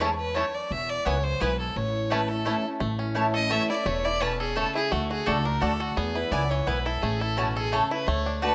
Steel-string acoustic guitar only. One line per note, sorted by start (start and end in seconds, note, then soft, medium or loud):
0.01 0.34 G#2 medium
0.36 0.69 F#2 medium
0.71 1.06 E2 medium
1.07 1.40 F#2 medium
1.41 1.75 G#2 medium
1.76 2.43 A2 medium
2.12 2.29 E3 medium
2.12 2.30 A3 medium
2.12 2.30 C#4 medium
2.12 2.29 E4 medium
2.30 2.46 C#4 soft
2.30 2.46 E4 medium
2.46 2.64 E3 medium
2.46 2.64 A3 medium
2.46 2.65 C#4 medium
2.46 2.64 E4 medium
2.65 2.82 C#4 medium
2.65 2.81 E4 medium
2.82 3.49 A2 medium
3.15 3.34 E3 medium
3.15 3.34 A3 medium
3.15 3.34 C#4 medium
3.15 3.33 E4 medium
3.34 3.51 C#4 medium
3.34 3.50 E4 medium
3.51 3.69 E3 medium
3.51 3.70 A3 medium
3.51 3.70 C#4 medium
3.51 3.69 E4 loud
3.72 3.87 C#4 soft
3.87 4.54 E2 medium
4.21 4.55 B2 medium
4.56 4.90 C#3 medium
4.92 5.25 D3 loud
5.26 5.44 D3 medium
5.26 5.45 A3 medium
5.26 5.45 D4 medium
5.26 5.44 F#4 medium
5.45 5.61 D4 medium
5.45 5.61 F#4 medium
5.61 5.95 D3 medium
5.61 5.95 A3 medium
5.61 5.96 D4 medium
5.61 5.96 F#4 medium
5.97 6.32 E2 medium
6.33 6.66 F#2 medium
6.67 7.01 G#2 medium
7.02 7.69 A2 medium
7.38 7.71 B2 medium
7.73 8.06 C#3 medium
8.08 8.41 D3 medium
8.43 8.55 D3 medium
8.43 8.55 A3 medium
8.43 8.55 D4 medium
8.43 8.55 F#4 loud